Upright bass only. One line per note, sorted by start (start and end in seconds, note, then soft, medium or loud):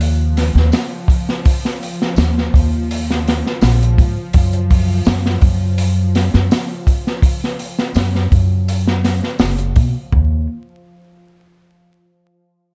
0.00 0.52 D#2 medium
0.55 0.70 D#2 medium
2.17 2.49 D#2 medium
2.54 3.41 D#2 medium
3.62 4.00 A#1 medium
3.98 4.15 G#2 medium
4.34 5.03 F#2 medium
5.07 5.38 F#2 medium
5.42 6.30 F#2 medium
6.34 6.49 F#2 medium
7.95 8.27 F#2 medium
8.32 9.19 F#2 medium
9.39 9.78 F#1 medium
9.76 9.93 B2 medium
10.13 10.46 D#2 medium